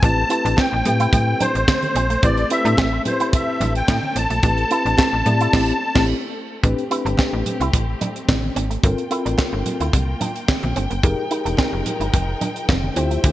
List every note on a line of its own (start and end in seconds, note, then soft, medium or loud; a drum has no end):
0.00 0.24 A1 loud
0.00 6.59 A3 medium
0.00 6.59 C4 medium
0.00 0.21 C4 medium
0.00 0.22 E4 medium
0.00 0.22 G4 medium
0.00 0.22 B4 medium
0.00 0.60 A5 loud
0.00 kick loud
0.00 closed hi-hat medium
0.00 muted conga medium
0.17 muted clean electric guitar stroke soft
0.30 0.67 C4 medium
0.30 0.67 E4 medium
0.30 0.40 E4 medium
0.30 0.67 G4 medium
0.30 0.67 B4 medium
0.30 closed hi-hat medium
0.45 0.55 A1 loud
0.45 0.54 D4 medium
0.45 closed hi-hat soft
0.57 0.67 C4 medium
0.57 1.44 G5 loud
0.57 kick loud
0.57 snare loud
0.57 clap medium
0.57 high conga medium
0.72 0.83 A1 loud
0.72 muted clean electric guitar stroke soft
0.85 1.07 A2 loud
0.85 1.59 C4 medium
0.85 1.59 E4 medium
0.85 1.59 G4 medium
0.85 1.59 B4 medium
0.85 closed hi-hat medium
0.85 low conga medium
1.00 1.09 E4 medium
1.00 closed hi-hat medium
1.13 1.34 A2 medium
1.13 kick loud
1.13 closed hi-hat loud
1.13 muted conga medium
1.13 low conga medium
1.40 1.50 D4 medium
1.40 2.26 C5 loud
1.40 closed hi-hat medium
1.40 low conga medium
1.55 1.65 A1 medium
1.55 closed hi-hat soft
1.68 muted clean electric guitar stroke soft
1.68 kick loud
1.68 snare loud
1.68 clap medium
1.68 high conga medium
1.82 closed hi-hat soft
1.82 high conga medium
1.95 2.17 A#1 medium
1.95 2.05 C4 medium
1.95 closed hi-hat medium
2.10 2.19 A3 medium
2.10 closed hi-hat medium
2.23 2.45 A1 loud
2.23 2.42 C4 medium
2.23 2.42 E4 medium
2.23 2.42 G4 medium
2.23 6.59 A4 medium
2.23 2.42 B4 medium
2.23 2.49 D5 loud
2.23 kick loud
2.23 closed hi-hat medium
2.23 muted conga medium
2.37 muted clean electric guitar stroke soft
2.37 closed hi-hat soft
2.50 2.88 C4 medium
2.50 2.88 E4 medium
2.50 2.61 E4 medium
2.50 2.88 G4 medium
2.50 2.88 B4 medium
2.50 3.02 E5 loud
2.50 closed hi-hat medium
2.65 2.75 A2 loud
2.65 2.74 D4 medium
2.65 closed hi-hat medium
2.77 3.00 A1 loud
2.77 2.88 C4 medium
2.77 kick loud
2.77 snare loud
2.77 clap medium
2.77 high conga medium
2.93 muted clean electric guitar stroke soft
3.05 3.79 C4 medium
3.05 3.80 E4 medium
3.05 3.80 G4 medium
3.05 3.80 B4 medium
3.05 3.32 C5 medium
3.05 closed hi-hat medium
3.05 low conga medium
3.20 3.29 E4 medium
3.20 closed hi-hat medium
3.33 3.73 E5 medium
3.33 kick loud
3.33 closed hi-hat loud
3.33 muted conga soft
3.61 3.82 A1 loud
3.61 3.70 D4 medium
3.61 closed hi-hat medium
3.61 muted conga soft
3.61 low conga medium
3.75 4.18 G5 loud
3.75 closed hi-hat soft
3.88 4.00 A2 loud
3.88 muted clean electric guitar stroke soft
3.88 kick loud
3.88 snare loud
3.88 clap medium
3.88 high conga medium
4.03 high conga medium
4.16 4.27 A1 loud
4.16 4.26 C4 medium
4.16 6.05 A5 loud
4.16 closed hi-hat medium
4.30 4.40 A#1 medium
4.30 4.39 A3 medium
4.30 closed hi-hat medium
4.43 4.65 A1 loud
4.43 4.62 C4 medium
4.43 4.62 E4 medium
4.43 4.62 G4 medium
4.43 4.62 B4 medium
4.43 kick loud
4.43 closed hi-hat medium
4.43 muted conga medium
4.58 muted clean electric guitar stroke soft
4.58 closed hi-hat soft
4.71 5.08 C4 medium
4.71 5.08 E4 medium
4.71 4.81 E4 medium
4.71 5.08 G4 medium
4.71 5.08 B4 medium
4.71 closed hi-hat medium
4.85 4.96 A1 loud
4.85 4.94 D4 medium
4.85 closed hi-hat medium
4.98 5.08 C4 medium
4.98 kick loud
4.98 snare loud
4.98 clap medium
4.98 high conga medium
5.13 5.23 A1 medium
5.13 muted clean electric guitar stroke soft
5.26 5.47 A2 medium
5.26 5.51 C4 medium
5.26 5.52 E4 medium
5.26 5.52 G4 medium
5.26 5.54 D5 loud
5.26 closed hi-hat medium
5.26 low conga medium
5.41 5.49 E4 medium
5.41 closed hi-hat medium
5.53 5.72 A1 loud
5.53 5.72 C4 loud
5.53 5.72 E4 loud
5.53 5.72 G4 loud
5.53 kick loud
5.53 snare loud
5.53 crash medium
5.95 6.14 A1 loud
5.95 6.13 C4 loud
5.95 6.14 E4 loud
5.95 6.14 G4 loud
5.95 kick loud
5.95 snare loud
5.95 crash medium
6.63 6.75 A1 loud
6.63 8.81 A3 medium
6.63 6.82 C4 medium
6.63 8.82 C4 medium
6.63 6.82 D4 medium
6.63 6.82 G4 medium
6.63 8.82 G4 medium
6.63 6.82 B4 loud
6.63 kick loud
6.63 closed hi-hat medium
6.63 muted conga soft
6.78 muted clean electric guitar stroke soft
6.78 closed hi-hat soft
6.90 7.64 C4 medium
6.90 7.65 D4 medium
6.90 7.01 E4 medium
6.90 7.65 G4 medium
6.90 7.65 B4 medium
6.90 closed hi-hat medium
7.05 7.16 G1 loud
7.05 7.14 D4 medium
7.05 closed hi-hat medium
7.17 7.28 C4 medium
7.17 kick loud
7.17 snare loud
7.17 clap medium
7.17 high conga medium
7.33 7.43 A1 medium
7.33 muted clean electric guitar stroke soft
7.46 closed hi-hat medium
7.46 low conga medium
7.60 7.71 C2 medium
7.60 7.69 E4 medium
7.60 closed hi-hat medium
7.73 7.95 A1 medium
7.73 kick loud
7.73 closed hi-hat loud
7.73 muted conga soft
8.01 8.11 D4 medium
8.01 closed hi-hat medium
8.01 muted conga soft
8.01 low conga medium
8.16 closed hi-hat soft
8.28 8.50 A1 loud
8.28 muted clean electric guitar stroke soft
8.28 kick loud
8.28 snare loud
8.28 clap medium
8.28 high conga medium
8.43 high conga medium
8.56 8.78 G#1 medium
8.56 8.66 C4 medium
8.56 closed hi-hat medium
8.70 8.79 A3 medium
8.70 closed hi-hat soft
8.83 8.95 G1 loud
8.83 11.02 A#3 medium
8.83 9.02 C4 medium
8.83 9.02 F4 medium
8.83 11.02 F4 medium
8.83 9.02 A4 medium
8.83 9.03 A#4 loud
8.83 13.32 G5 medium
8.83 kick loud
8.83 closed hi-hat medium
8.83 muted conga soft
8.98 muted clean electric guitar stroke soft
8.98 closed hi-hat soft
9.10 9.85 C4 medium
9.10 9.21 E4 medium
9.10 9.85 F4 medium
9.10 9.85 A4 medium
9.10 9.85 A#4 medium
9.10 closed hi-hat medium
9.26 9.36 A1 medium
9.26 9.34 D4 medium
9.26 closed hi-hat medium
9.38 9.48 C4 medium
9.38 kick loud
9.38 snare loud
9.38 clap medium
9.38 high conga medium
9.53 9.63 G1 medium
9.53 muted clean electric guitar stroke soft
9.66 closed hi-hat medium
9.66 low conga medium
9.80 9.91 D2 medium
9.80 9.89 E4 medium
9.80 closed hi-hat medium
9.93 10.15 C2 medium
9.93 kick loud
9.93 closed hi-hat loud
9.93 muted conga soft
9.93 low conga medium
10.20 10.31 D4 medium
10.20 closed hi-hat medium
10.20 muted conga soft
10.20 low conga medium
10.36 closed hi-hat soft
10.48 muted clean electric guitar stroke soft
10.48 kick loud
10.48 snare loud
10.48 clap medium
10.48 high conga medium
10.63 10.73 A#1 medium
10.63 closed hi-hat soft
10.63 high conga medium
10.76 10.88 G1 medium
10.76 10.86 C4 medium
10.76 closed hi-hat medium
10.90 11.01 F#1 medium
10.90 10.99 A#3 medium
10.90 closed hi-hat medium
11.03 11.15 F1 loud
11.03 12.94 F3 medium
11.03 12.94 G#3 medium
11.03 11.22 D#4 medium
11.03 12.94 D#4 medium
11.03 11.23 G4 medium
11.03 11.23 G#4 medium
11.03 12.94 A#4 medium
11.03 11.23 A#4 medium
11.03 kick loud
11.03 closed hi-hat medium
11.03 muted conga medium
11.18 muted clean electric guitar stroke soft
11.31 12.05 D#4 medium
11.31 11.41 D#4 medium
11.31 12.05 G4 medium
11.31 12.05 G#4 medium
11.31 12.05 A#4 medium
11.31 closed hi-hat medium
11.45 11.56 E1 medium
11.45 11.54 D4 medium
11.45 closed hi-hat medium
11.57 11.68 C4 medium
11.57 kick loud
11.57 snare loud
11.57 clap medium
11.57 high conga medium
11.73 11.83 F1 medium
11.73 muted clean electric guitar stroke soft
11.86 closed hi-hat medium
11.86 low conga medium
12.00 12.11 G1 medium
12.00 12.09 D#4 medium
12.00 closed hi-hat soft
12.14 12.35 F1 medium
12.14 kick loud
12.14 closed hi-hat loud
12.14 muted conga soft
12.41 12.51 D4 medium
12.41 closed hi-hat medium
12.41 muted conga soft
12.41 low conga medium
12.56 closed hi-hat soft
12.69 12.90 F1 loud
12.69 muted clean electric guitar stroke soft
12.69 kick loud
12.69 snare loud
12.69 clap medium
12.69 high conga medium
12.83 high conga medium
12.96 13.18 D2 loud
12.96 13.32 D3 medium
12.96 13.32 F3 medium
12.96 13.06 C4 medium
12.96 13.32 C4 medium
12.96 13.32 E4 medium
12.96 13.32 F4 medium
12.96 13.32 G4 medium
12.96 13.32 C5 medium
12.96 13.32 E5 medium
12.96 closed hi-hat medium
13.11 13.20 A3 medium
13.11 closed hi-hat medium
13.24 13.32 D2 loud
13.24 kick loud
13.24 closed hi-hat medium
13.24 muted conga medium